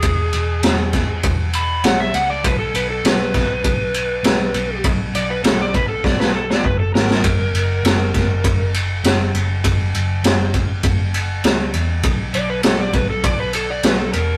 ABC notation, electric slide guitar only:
X:1
M:4/4
L:1/16
Q:1/4=100
K:F#mix
V:1 name="Electric slide guitar"
G8 z2 b2 f e f =d | B =A B A B12 | z2 =d B =A d B A d B A d B A ^A2- | A8- A2 z6 |
z16 | z2 =d B =A d B A d B A d B A ^A2 |]